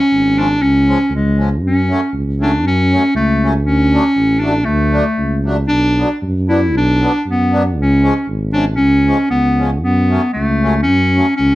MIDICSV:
0, 0, Header, 1, 4, 480
1, 0, Start_track
1, 0, Key_signature, 3, "minor"
1, 0, Tempo, 507614
1, 575, Time_signature, 2, 2, 24, 8
1, 4422, Tempo, 516796
1, 10806, End_track
2, 0, Start_track
2, 0, Title_t, "Clarinet"
2, 0, Program_c, 0, 71
2, 0, Note_on_c, 0, 61, 114
2, 367, Note_on_c, 0, 62, 96
2, 381, Note_off_c, 0, 61, 0
2, 587, Note_on_c, 0, 61, 106
2, 601, Note_off_c, 0, 62, 0
2, 1060, Note_off_c, 0, 61, 0
2, 1087, Note_on_c, 0, 56, 71
2, 1411, Note_off_c, 0, 56, 0
2, 1574, Note_on_c, 0, 61, 88
2, 2011, Note_off_c, 0, 61, 0
2, 2292, Note_on_c, 0, 62, 88
2, 2504, Note_off_c, 0, 62, 0
2, 2526, Note_on_c, 0, 61, 99
2, 2963, Note_off_c, 0, 61, 0
2, 2987, Note_on_c, 0, 57, 87
2, 3320, Note_off_c, 0, 57, 0
2, 3449, Note_on_c, 0, 61, 101
2, 4157, Note_on_c, 0, 62, 95
2, 4171, Note_off_c, 0, 61, 0
2, 4397, Note_on_c, 0, 57, 81
2, 4411, Note_off_c, 0, 62, 0
2, 5130, Note_off_c, 0, 57, 0
2, 5357, Note_on_c, 0, 62, 113
2, 5817, Note_off_c, 0, 62, 0
2, 6106, Note_on_c, 0, 64, 90
2, 6325, Note_off_c, 0, 64, 0
2, 6365, Note_on_c, 0, 62, 112
2, 6797, Note_off_c, 0, 62, 0
2, 6857, Note_on_c, 0, 59, 86
2, 7170, Note_off_c, 0, 59, 0
2, 7339, Note_on_c, 0, 61, 85
2, 7759, Note_off_c, 0, 61, 0
2, 8000, Note_on_c, 0, 62, 98
2, 8108, Note_off_c, 0, 62, 0
2, 8211, Note_on_c, 0, 61, 96
2, 8677, Note_off_c, 0, 61, 0
2, 8721, Note_on_c, 0, 59, 83
2, 9068, Note_off_c, 0, 59, 0
2, 9190, Note_on_c, 0, 59, 84
2, 9654, Note_off_c, 0, 59, 0
2, 9671, Note_on_c, 0, 57, 78
2, 10129, Note_off_c, 0, 57, 0
2, 10135, Note_on_c, 0, 61, 101
2, 10602, Note_off_c, 0, 61, 0
2, 10632, Note_on_c, 0, 61, 95
2, 10806, Note_off_c, 0, 61, 0
2, 10806, End_track
3, 0, Start_track
3, 0, Title_t, "Accordion"
3, 0, Program_c, 1, 21
3, 346, Note_on_c, 1, 53, 58
3, 353, Note_on_c, 1, 56, 46
3, 359, Note_on_c, 1, 61, 64
3, 448, Note_off_c, 1, 53, 0
3, 452, Note_off_c, 1, 56, 0
3, 455, Note_off_c, 1, 61, 0
3, 827, Note_on_c, 1, 56, 52
3, 832, Note_on_c, 1, 53, 70
3, 836, Note_on_c, 1, 61, 72
3, 929, Note_off_c, 1, 56, 0
3, 931, Note_off_c, 1, 53, 0
3, 933, Note_off_c, 1, 61, 0
3, 1304, Note_on_c, 1, 53, 48
3, 1310, Note_on_c, 1, 61, 49
3, 1312, Note_on_c, 1, 56, 50
3, 1409, Note_off_c, 1, 53, 0
3, 1413, Note_off_c, 1, 56, 0
3, 1413, Note_off_c, 1, 61, 0
3, 1780, Note_on_c, 1, 54, 55
3, 1788, Note_on_c, 1, 61, 68
3, 1793, Note_on_c, 1, 57, 51
3, 1891, Note_off_c, 1, 54, 0
3, 1895, Note_off_c, 1, 61, 0
3, 1897, Note_off_c, 1, 57, 0
3, 2268, Note_on_c, 1, 54, 47
3, 2273, Note_on_c, 1, 57, 53
3, 2277, Note_on_c, 1, 61, 66
3, 2377, Note_off_c, 1, 54, 0
3, 2380, Note_off_c, 1, 57, 0
3, 2381, Note_off_c, 1, 61, 0
3, 2764, Note_on_c, 1, 54, 68
3, 2766, Note_on_c, 1, 61, 61
3, 2778, Note_on_c, 1, 57, 56
3, 2864, Note_off_c, 1, 54, 0
3, 2866, Note_off_c, 1, 61, 0
3, 2871, Note_off_c, 1, 57, 0
3, 3242, Note_on_c, 1, 54, 50
3, 3248, Note_on_c, 1, 61, 64
3, 3255, Note_on_c, 1, 57, 55
3, 3341, Note_off_c, 1, 54, 0
3, 3344, Note_off_c, 1, 61, 0
3, 3348, Note_off_c, 1, 57, 0
3, 3716, Note_on_c, 1, 57, 58
3, 3719, Note_on_c, 1, 54, 58
3, 3722, Note_on_c, 1, 62, 79
3, 3816, Note_off_c, 1, 57, 0
3, 3817, Note_off_c, 1, 54, 0
3, 3819, Note_off_c, 1, 62, 0
3, 4182, Note_on_c, 1, 54, 54
3, 4183, Note_on_c, 1, 57, 50
3, 4191, Note_on_c, 1, 62, 59
3, 4289, Note_off_c, 1, 54, 0
3, 4290, Note_off_c, 1, 57, 0
3, 4294, Note_off_c, 1, 62, 0
3, 4643, Note_on_c, 1, 54, 63
3, 4649, Note_on_c, 1, 57, 56
3, 4652, Note_on_c, 1, 62, 68
3, 4758, Note_off_c, 1, 54, 0
3, 4761, Note_off_c, 1, 57, 0
3, 4763, Note_off_c, 1, 62, 0
3, 5132, Note_on_c, 1, 54, 61
3, 5134, Note_on_c, 1, 57, 55
3, 5151, Note_on_c, 1, 62, 61
3, 5245, Note_off_c, 1, 54, 0
3, 5245, Note_off_c, 1, 57, 0
3, 5254, Note_off_c, 1, 62, 0
3, 5628, Note_on_c, 1, 54, 58
3, 5630, Note_on_c, 1, 59, 50
3, 5634, Note_on_c, 1, 62, 65
3, 5734, Note_off_c, 1, 54, 0
3, 5735, Note_off_c, 1, 59, 0
3, 5737, Note_off_c, 1, 62, 0
3, 6100, Note_on_c, 1, 54, 54
3, 6104, Note_on_c, 1, 62, 59
3, 6109, Note_on_c, 1, 59, 56
3, 6209, Note_off_c, 1, 54, 0
3, 6211, Note_off_c, 1, 62, 0
3, 6214, Note_off_c, 1, 59, 0
3, 6583, Note_on_c, 1, 54, 57
3, 6594, Note_on_c, 1, 59, 57
3, 6600, Note_on_c, 1, 62, 67
3, 6689, Note_off_c, 1, 54, 0
3, 6694, Note_off_c, 1, 59, 0
3, 6697, Note_off_c, 1, 62, 0
3, 7061, Note_on_c, 1, 54, 59
3, 7062, Note_on_c, 1, 59, 56
3, 7067, Note_on_c, 1, 62, 64
3, 7164, Note_off_c, 1, 54, 0
3, 7165, Note_off_c, 1, 59, 0
3, 7167, Note_off_c, 1, 62, 0
3, 7525, Note_on_c, 1, 53, 64
3, 7535, Note_on_c, 1, 56, 55
3, 7536, Note_on_c, 1, 61, 78
3, 7634, Note_off_c, 1, 53, 0
3, 7638, Note_off_c, 1, 56, 0
3, 7639, Note_off_c, 1, 61, 0
3, 7998, Note_on_c, 1, 53, 59
3, 8007, Note_on_c, 1, 61, 55
3, 8010, Note_on_c, 1, 56, 52
3, 8109, Note_off_c, 1, 53, 0
3, 8114, Note_off_c, 1, 61, 0
3, 8115, Note_off_c, 1, 56, 0
3, 8497, Note_on_c, 1, 53, 63
3, 8502, Note_on_c, 1, 61, 73
3, 8504, Note_on_c, 1, 56, 53
3, 8600, Note_off_c, 1, 53, 0
3, 8603, Note_off_c, 1, 61, 0
3, 8604, Note_off_c, 1, 56, 0
3, 8977, Note_on_c, 1, 53, 51
3, 8980, Note_on_c, 1, 56, 45
3, 8989, Note_on_c, 1, 61, 53
3, 9086, Note_off_c, 1, 53, 0
3, 9087, Note_off_c, 1, 56, 0
3, 9092, Note_off_c, 1, 61, 0
3, 9450, Note_on_c, 1, 54, 55
3, 9450, Note_on_c, 1, 57, 52
3, 9463, Note_on_c, 1, 61, 63
3, 9565, Note_off_c, 1, 54, 0
3, 9565, Note_off_c, 1, 57, 0
3, 9572, Note_off_c, 1, 61, 0
3, 9950, Note_on_c, 1, 54, 54
3, 9952, Note_on_c, 1, 57, 50
3, 9952, Note_on_c, 1, 61, 60
3, 10054, Note_off_c, 1, 54, 0
3, 10056, Note_off_c, 1, 57, 0
3, 10056, Note_off_c, 1, 61, 0
3, 10437, Note_on_c, 1, 54, 60
3, 10444, Note_on_c, 1, 57, 55
3, 10446, Note_on_c, 1, 61, 67
3, 10537, Note_off_c, 1, 54, 0
3, 10540, Note_off_c, 1, 57, 0
3, 10542, Note_off_c, 1, 61, 0
3, 10806, End_track
4, 0, Start_track
4, 0, Title_t, "Tuba"
4, 0, Program_c, 2, 58
4, 109, Note_on_c, 2, 32, 81
4, 584, Note_on_c, 2, 37, 90
4, 598, Note_off_c, 2, 32, 0
4, 892, Note_off_c, 2, 37, 0
4, 1038, Note_on_c, 2, 37, 83
4, 1521, Note_on_c, 2, 42, 82
4, 1535, Note_off_c, 2, 37, 0
4, 1843, Note_off_c, 2, 42, 0
4, 2015, Note_on_c, 2, 37, 82
4, 2488, Note_on_c, 2, 42, 100
4, 2502, Note_off_c, 2, 37, 0
4, 2806, Note_off_c, 2, 42, 0
4, 2973, Note_on_c, 2, 37, 85
4, 3449, Note_on_c, 2, 38, 101
4, 3463, Note_off_c, 2, 37, 0
4, 3764, Note_off_c, 2, 38, 0
4, 3933, Note_on_c, 2, 33, 82
4, 4415, Note_on_c, 2, 38, 96
4, 4429, Note_off_c, 2, 33, 0
4, 4727, Note_off_c, 2, 38, 0
4, 4891, Note_on_c, 2, 37, 75
4, 5371, Note_on_c, 2, 35, 84
4, 5385, Note_off_c, 2, 37, 0
4, 5687, Note_off_c, 2, 35, 0
4, 5855, Note_on_c, 2, 42, 87
4, 6336, Note_on_c, 2, 35, 108
4, 6349, Note_off_c, 2, 42, 0
4, 6647, Note_off_c, 2, 35, 0
4, 6815, Note_on_c, 2, 42, 86
4, 7298, Note_on_c, 2, 37, 105
4, 7312, Note_off_c, 2, 42, 0
4, 7604, Note_off_c, 2, 37, 0
4, 7766, Note_on_c, 2, 32, 81
4, 8240, Note_on_c, 2, 37, 91
4, 8254, Note_off_c, 2, 32, 0
4, 8556, Note_off_c, 2, 37, 0
4, 8721, Note_on_c, 2, 37, 82
4, 9213, Note_on_c, 2, 42, 95
4, 9227, Note_off_c, 2, 37, 0
4, 9530, Note_off_c, 2, 42, 0
4, 9699, Note_on_c, 2, 37, 85
4, 10181, Note_on_c, 2, 42, 96
4, 10195, Note_off_c, 2, 37, 0
4, 10493, Note_off_c, 2, 42, 0
4, 10656, Note_on_c, 2, 37, 88
4, 10806, Note_off_c, 2, 37, 0
4, 10806, End_track
0, 0, End_of_file